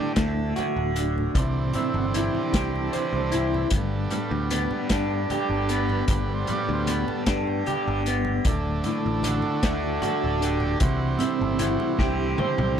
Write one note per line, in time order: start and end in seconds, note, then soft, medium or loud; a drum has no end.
0.00 0.96 D2 medium
0.00 0.99 D2 medium
0.00 1.35 A2 medium
0.00 1.59 A2 medium
0.00 0.13 D3 medium
0.00 0.37 D3 medium
0.00 0.94 D3 medium
0.00 0.12 A3 medium
0.00 0.13 D4 medium
0.00 1.30 D4 medium
0.00 0.15 G4 loud
0.16 0.51 D2 loud
0.16 1.35 A3 medium
0.16 0.54 A4 medium
0.16 kick medium
0.16 snare loud
0.16 closed hi-hat loud
0.37 2.23 D3 medium
0.37 low conga soft
0.56 1.36 F#4 medium
0.56 closed hi-hat medium
0.56 high conga medium
0.56 low conga medium
0.76 1.28 D1 medium
0.96 3.45 D2 medium
0.96 1.36 D3 medium
0.96 closed hi-hat medium
1.18 low conga medium
1.34 1.70 C2 loud
1.34 3.33 C3 medium
1.34 3.68 E3 medium
1.34 3.69 C4 medium
1.34 3.69 D4 medium
1.34 kick loud
1.34 closed hi-hat medium
1.34 high conga medium
1.59 4.05 A2 medium
1.73 3.73 C4 medium
1.73 1.96 E4 medium
1.73 closed hi-hat medium
1.73 low conga medium
1.94 2.29 G1 loud
1.94 2.06 F#4 medium
2.14 3.31 E4 medium
2.14 2.71 G4 medium
2.14 closed hi-hat medium
2.14 high conga medium
2.23 2.83 D3 medium
2.35 low conga medium
2.53 2.88 C2 medium
2.53 4.91 G4 medium
2.53 kick medium
2.53 snare loud
2.53 closed hi-hat loud
2.75 2.95 A4 medium
2.75 high conga medium
2.83 4.65 D3 medium
2.93 3.72 C5 medium
2.93 closed hi-hat medium
2.93 high conga medium
2.97 3.14 B4 loud
3.13 3.65 C2 medium
3.13 3.35 A4 loud
3.13 high conga medium
3.32 3.72 E4 medium
3.32 closed hi-hat medium
3.32 low conga medium
3.37 3.55 G4 medium
3.45 5.89 D2 medium
3.54 3.72 B4 medium
3.54 low conga medium
3.70 4.06 G1 loud
3.70 5.70 G2 medium
3.70 6.05 G3 medium
3.70 6.05 B3 medium
3.70 6.05 D4 medium
3.70 kick loud
3.70 closed hi-hat medium
3.70 high conga loud
3.93 4.31 A4 medium
3.93 low conga soft
4.06 6.49 A2 medium
4.10 6.09 G3 medium
4.10 closed hi-hat medium
4.10 low conga medium
4.31 4.66 D2 loud
4.50 5.69 B3 medium
4.50 closed hi-hat medium
4.50 high conga medium
4.65 5.28 D3 medium
4.71 low conga medium
4.89 5.25 G2 loud
4.89 7.27 D4 medium
4.89 kick medium
4.89 snare loud
4.89 closed hi-hat loud
5.10 low conga soft
5.28 7.11 D3 medium
5.28 7.28 G4 medium
5.28 closed hi-hat medium
5.28 high conga loud
5.28 low conga medium
5.32 5.52 G4 medium
5.50 6.01 G1 medium
5.50 5.72 A4 medium
5.69 6.87 B3 medium
5.69 closed hi-hat medium
5.74 6.33 B4 loud
5.89 8.33 D2 medium
5.89 low conga medium
6.08 6.43 G1 loud
6.08 8.06 G2 medium
6.08 7.24 G3 medium
6.08 7.24 B3 medium
6.08 7.25 D4 medium
6.08 kick loud
6.08 closed hi-hat loud
6.08 high conga medium
6.29 low conga soft
6.34 6.52 C5 medium
6.47 8.96 A2 medium
6.47 8.46 G3 medium
6.47 closed hi-hat medium
6.47 low conga medium
6.52 6.71 D5 loud
6.69 7.03 D2 loud
6.73 6.91 C5 medium
6.87 8.06 B3 medium
6.87 7.10 B4 medium
6.87 closed hi-hat medium
6.87 high conga medium
7.07 7.71 D3 medium
7.07 7.49 A4 medium
7.07 low conga medium
7.26 7.62 G2 medium
7.26 8.46 D4 medium
7.26 kick medium
7.26 snare loud
7.26 closed hi-hat medium
7.47 7.85 G4 medium
7.47 low conga soft
7.66 8.03 G3 soft
7.66 8.03 B3 soft
7.66 8.04 D4 medium
7.66 8.46 G4 medium
7.66 closed hi-hat medium
7.66 high conga loud
7.71 9.56 D3 medium
7.87 8.39 G1 loud
8.06 8.47 B3 medium
8.06 closed hi-hat medium
8.25 low conga medium
8.34 10.77 D2 medium
8.45 8.80 D1 loud
8.45 10.43 D2 medium
8.45 10.78 D3 medium
8.45 10.79 A3 medium
8.45 10.79 D4 medium
8.45 kick loud
8.45 closed hi-hat loud
8.45 high conga loud
8.65 low conga soft
8.84 10.83 A2 medium
8.84 closed hi-hat medium
8.84 low conga loud
8.97 11.37 A2 medium
9.06 9.40 A1 loud
9.23 10.39 D3 medium
9.23 closed hi-hat medium
9.23 high conga loud
9.27 10.01 F#4 medium
9.42 low conga medium
9.56 10.18 D3 medium
9.63 9.98 D2 medium
9.63 10.82 A3 medium
9.63 kick medium
9.63 snare loud
9.63 closed hi-hat loud
9.83 low conga soft
10.02 10.82 F#4 medium
10.02 closed hi-hat medium
10.02 high conga medium
10.02 low conga loud
10.06 10.42 A4 loud
10.18 12.00 D3 medium
10.24 10.75 D1 loud
10.40 10.81 D3 medium
10.40 10.84 G4 loud
10.40 closed hi-hat medium
10.60 low conga medium
10.78 11.16 C2 loud
10.78 12.80 D2 medium
10.78 12.79 C3 medium
10.78 12.80 E3 medium
10.78 12.80 G3 medium
10.78 kick loud
10.78 closed hi-hat medium
10.78 high conga loud
10.82 12.80 C4 medium
10.82 11.23 F#4 medium
11.01 low conga soft
11.19 12.80 C4 medium
11.19 11.62 E4 medium
11.19 closed hi-hat medium
11.19 low conga loud
11.37 12.80 A2 medium
11.37 low conga soft
11.41 11.76 G1 loud
11.59 12.78 E4 medium
11.59 11.98 F#4 medium
11.59 closed hi-hat medium
11.59 high conga medium
11.59 low conga soft
11.80 low conga medium
11.99 12.34 C2 loud
11.99 12.58 D3 medium
11.99 12.80 G4 medium
11.99 kick medium
11.99 snare medium
12.20 low conga soft
12.38 12.80 C5 medium
12.38 high tom medium
12.38 high conga loud
12.38 low conga loud
12.58 12.80 C2 loud
12.58 12.80 D3 medium
12.58 mid tom medium